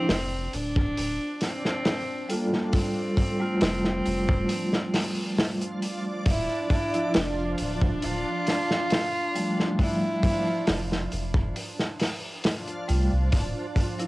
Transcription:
0.00 14.07 F3 medium
0.00 0.56 C4 loud
0.00 14.07 D4 medium
0.09 0.48 F1 medium
0.09 snare loud
0.09 open hi-hat medium
0.53 0.92 D1 medium
0.53 1.44 D4 loud
0.53 open hi-hat medium
0.76 kick loud
0.97 1.18 D1 medium
0.97 open hi-hat medium
1.41 2.34 C4 loud
1.41 snare soft
1.41 open hi-hat medium
1.65 snare soft
1.85 snare medium
1.85 open hi-hat medium
2.29 3.35 G3 medium
2.29 2.75 A#3 medium
2.29 3.36 F4 medium
2.29 3.35 A4 medium
2.29 open hi-hat medium
2.53 snare soft
2.73 5.80 C4 loud
2.73 kick loud
2.73 open hi-hat medium
3.17 kick medium
3.17 open hi-hat medium
3.40 6.23 G3 medium
3.40 6.24 A3 medium
3.40 6.24 F4 loud
3.61 4.01 F1 medium
3.61 snare loud
3.61 open hi-hat medium
3.85 snare soft
4.06 4.45 F1 medium
4.06 open hi-hat medium
4.29 kick loud
4.49 open hi-hat medium
4.73 snare soft
4.94 snare medium
4.94 open hi-hat medium
5.38 snare loud
5.38 open hi-hat medium
5.61 closed hi-hat soft
5.82 open hi-hat medium
6.26 6.47 D1 loud
6.26 6.68 E4 loud
6.26 kick loud
6.26 open hi-hat medium
6.70 7.18 E4 loud
6.70 kick medium
6.70 open hi-hat medium
6.93 7.14 F3 medium
6.93 7.14 D4 medium
6.93 7.15 E4 medium
6.93 closed hi-hat soft
7.14 7.54 F1 medium
7.14 7.60 D4 loud
7.14 snare loud
7.14 open hi-hat medium
7.58 7.98 D1 medium
7.58 8.06 D4 medium
7.58 open hi-hat medium
7.82 kick loud
8.02 8.24 D1 medium
8.02 9.83 F4 loud
8.02 open hi-hat medium
8.47 snare soft
8.47 open hi-hat medium
8.71 snare soft
8.90 snare loud
8.90 open hi-hat medium
9.35 10.42 F3 medium
9.35 10.41 G3 medium
9.35 10.41 A3 medium
9.35 open hi-hat medium
9.60 snare soft
9.79 11.13 E4 loud
9.79 kick loud
9.79 open hi-hat medium
10.23 kick medium
10.23 open hi-hat medium
10.67 11.07 F1 medium
10.67 snare loud
10.67 open hi-hat medium
10.92 snare soft
11.12 11.51 F1 medium
11.12 open hi-hat medium
11.34 kick loud
11.56 open hi-hat medium
11.79 snare soft
11.99 snare medium
11.99 open hi-hat medium
12.44 snare loud
12.44 open hi-hat medium
12.67 closed hi-hat soft
12.88 13.09 C2 medium
12.88 13.11 G3 medium
12.88 13.11 A3 medium
12.88 13.11 F4 medium
12.88 open hi-hat medium
13.12 13.30 C2 medium
13.32 13.53 D1 loud
13.32 kick loud
13.32 open hi-hat medium
13.76 kick medium
13.76 open hi-hat medium
13.99 14.07 F3 medium
13.99 14.07 D4 medium
13.99 14.07 E4 medium
13.99 closed hi-hat soft

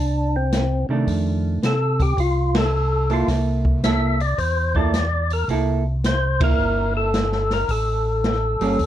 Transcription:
0.00 0.85 C2 medium
0.00 0.36 D4 medium
0.36 0.87 C4 medium
0.53 snare medium
0.53 closed hi-hat soft
0.89 1.06 C3 medium
0.89 1.60 D#3 medium
0.89 1.60 A3 medium
0.89 1.60 D4 medium
1.07 1.59 F2 medium
1.07 kick soft
1.07 open hi-hat soft
1.62 2.14 C3 medium
1.62 2.02 A4 medium
1.62 snare medium
1.62 closed hi-hat medium
1.99 2.20 G4 medium
1.99 kick soft
1.99 open hi-hat soft
2.17 3.24 C2 medium
2.17 2.57 F4 medium
2.17 kick soft
2.17 open hi-hat soft
2.55 3.12 A4 medium
2.55 snare medium
2.55 ride medium
3.10 3.80 A#3 medium
3.10 3.80 E4 medium
3.10 3.29 F4 medium
3.10 3.80 A4 medium
3.10 open hi-hat soft
3.27 4.34 C2 medium
3.27 kick soft
3.27 snare soft
3.27 open hi-hat soft
3.65 kick medium
3.83 4.17 A#3 medium
3.83 4.17 E4 medium
3.83 4.17 A4 medium
3.83 4.21 E5 medium
3.83 snare medium
3.83 closed hi-hat medium
4.20 4.39 D5 medium
4.20 open hi-hat soft
4.38 5.45 E2 medium
4.38 4.76 C5 medium
4.38 kick soft
4.38 open hi-hat soft
4.75 4.92 A#3 medium
4.75 4.92 E4 medium
4.75 4.93 A4 medium
4.75 5.32 D5 medium
4.75 kick soft
4.94 snare medium
4.94 closed hi-hat soft
5.30 5.49 A#4 medium
5.30 open hi-hat soft
5.48 6.55 C2 medium
5.48 5.82 A#3 medium
5.48 5.83 E4 medium
5.48 5.83 A4 medium
5.48 kick soft
5.48 open hi-hat soft
6.04 6.43 C5 medium
6.04 snare medium
6.04 closed hi-hat soft
6.41 7.10 A#3 medium
6.41 7.11 E4 medium
6.41 6.93 A#4 medium
6.41 kick medium
6.41 ride medium
6.59 7.65 G1 medium
6.97 7.53 A4 medium
7.14 snare medium
7.14 closed hi-hat soft
7.32 snare soft
7.51 7.71 A#4 medium
7.51 snare soft
7.51 open hi-hat soft
7.69 8.57 A1 medium
7.69 8.86 A4 medium
7.69 kick soft
7.69 open hi-hat soft
8.24 snare medium
8.24 closed hi-hat soft
8.60 8.77 G1 medium
8.60 8.78 G3 medium
8.60 8.78 A#3 medium
8.60 8.78 C#4 medium
8.60 open hi-hat soft
8.79 8.86 E2 medium
8.79 kick soft
8.79 open hi-hat soft

